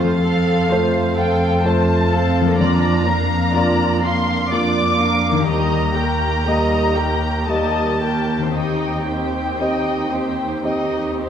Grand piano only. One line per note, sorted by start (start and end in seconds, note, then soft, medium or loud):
0.00 0.68 F2 soft
0.71 1.60 A3 soft
0.71 1.61 F4 soft
0.71 1.61 C5 soft
1.65 2.55 A3 soft
1.65 2.55 F4 soft
1.65 2.56 C5 soft
2.60 3.53 F2 soft
3.55 4.48 A#3 soft
3.55 4.48 F4 soft
3.55 4.48 D5 soft
4.52 5.45 A#3 soft
4.52 5.45 F4 soft
4.52 5.46 D5 soft
5.48 6.44 D#2 soft
6.47 7.45 A#3 soft
6.47 7.46 G4 soft
6.47 7.46 D#5 soft
7.49 8.51 A#3 soft
7.49 8.52 G4 soft
7.49 8.52 D#5 soft
8.56 9.58 D#2 soft
9.61 10.61 C4 soft
9.61 10.62 G4 soft
9.61 10.62 D#5 soft
10.64 11.29 C4 soft
10.64 11.29 G4 soft
10.64 11.29 D#5 soft